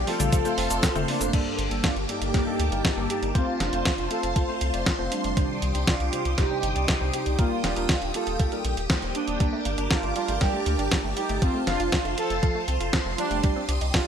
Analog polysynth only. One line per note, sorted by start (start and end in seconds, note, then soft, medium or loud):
0.07 1.05 F4 medium
0.07 1.04 A4 loud
1.08 1.80 A#3 medium
1.08 1.83 D4 loud
1.84 1.96 D4 medium
1.84 1.95 F4 medium
2.09 3.06 D#4 medium
2.09 3.06 G4 loud
3.10 3.34 D#4 medium
3.10 3.36 G4 loud
3.35 3.59 C4 medium
3.35 3.59 F4 loud
3.60 4.08 D4 medium
3.60 4.07 F4 loud
4.11 4.58 F4 medium
4.11 4.58 A4 loud
5.11 5.84 G3 medium
5.11 5.83 D4 medium
5.88 6.35 D4 medium
5.88 6.34 F4 loud
6.38 7.10 D#4 medium
6.38 7.09 G4 loud
7.14 7.37 D#4 medium
7.14 7.40 G4 loud
7.39 7.63 A#3 medium
7.39 7.63 F4 loud
7.64 8.11 D4 medium
7.64 8.11 F4 loud
8.15 8.62 F4 medium
8.15 8.61 A4 loud
9.15 9.87 A#3 medium
9.15 9.90 D4 medium
9.91 10.14 D4 medium
9.91 10.14 F4 medium
10.16 10.40 D4 medium
10.16 10.42 F4 medium
10.41 11.13 D4 medium
10.41 11.15 G4 loud
11.17 11.40 D#4 medium
11.17 11.43 G4 loud
11.42 11.66 C4 medium
11.42 11.66 F4 loud
11.67 12.14 D4 medium
11.67 12.17 F4 loud
12.18 12.65 F4 medium
12.18 12.65 A4 loud
13.19 13.66 G3 medium
13.19 13.65 D4 loud
13.94 14.07 D4 medium
13.94 14.07 F4 medium